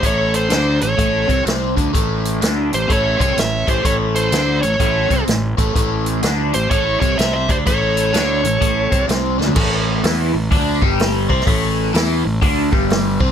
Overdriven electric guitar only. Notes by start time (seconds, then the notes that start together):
0.02 A2 A3
0.50 D3 D4
0.81 A2
0.98 A2 A3
1.28 C3 C4
1.45 C3 C4
1.76 D3 D4
1.93 A2 A3
2.41 D3 D4
2.71 A2
2.88 A2 A3
3.18 C3 C4
3.36 A2
3.67 A2 A3
3.84 A2 A3
4.32 D3 D4
4.62 A2
4.80 A2 A3
5.10 C3 C4
5.27 A2
5.58 A2 A3
5.75 A2 A3
6.22 D3 D4
6.54 A2
6.70 A2 A3
7.01 C3 C4
7.18 C3 C4
7.48 D3 D4
7.66 A2 A3
8.13 D3 D4
8.44 A2
8.61 A2 A3
8.91 C3 C4
9.08 C3 C4
9.39 D3 D4
9.55 A2 A3
10.04 E3 E4
10.34 A2
10.51 D3 D4
10.82 G2 G3
11.29 C3 C4
11.46 A2 A3
11.94 E3 E4
12.24 A2
12.42 D3 D4
12.72 G2 G3
13.20 C3 C4